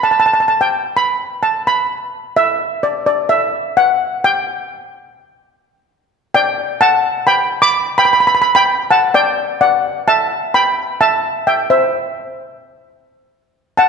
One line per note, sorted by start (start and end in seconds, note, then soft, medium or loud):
0.03 0.10 A5 medium
0.11 0.18 A5 medium
0.20 0.25 A5 medium
0.26 0.32 A5 medium
0.34 0.39 A5 medium
0.40 0.47 A5 medium
0.48 0.56 A5 medium
0.61 0.97 G5 medium
0.97 1.45 B5 medium
1.43 1.67 A5 medium
1.67 2.11 B5 medium
2.37 2.80 E5 medium
2.83 3.05 D5 medium
3.06 3.31 D5 medium
3.29 3.78 E5 medium
3.77 4.25 F#5 medium
4.24 5.84 G5 loud
6.34 6.78 D5 medium
6.34 6.78 G5 loud
6.81 7.24 F#5 medium
6.81 7.29 A5 loud
7.27 7.60 G5 medium
7.27 7.61 B5 medium
7.62 7.95 B5 medium
7.62 7.98 D6 loud
7.98 8.05 G5 medium
7.98 8.04 B5 loud
8.05 8.12 B5 medium
8.13 8.19 B5 medium
8.20 8.26 B5 medium
8.27 8.33 B5 medium
8.35 8.40 B5 medium
8.42 8.49 B5 medium
8.55 8.88 G5 medium
8.55 8.87 B5 loud
8.91 9.12 F#5 medium
8.91 9.14 A5 medium
9.14 9.57 D5 medium
9.14 9.62 G5 loud
9.61 9.93 D5 medium
9.61 9.93 F#5 medium
10.08 10.50 E5 medium
10.08 10.55 A5 loud
10.54 10.97 G5 medium
10.54 11.01 B5 loud
11.01 11.43 E5 medium
11.01 11.48 A5 loud
11.47 11.68 E5 medium
11.47 11.70 G5 medium
11.70 12.58 C5 medium
11.70 12.58 E5 medium
13.77 13.89 F#5 medium
13.77 13.89 A5 medium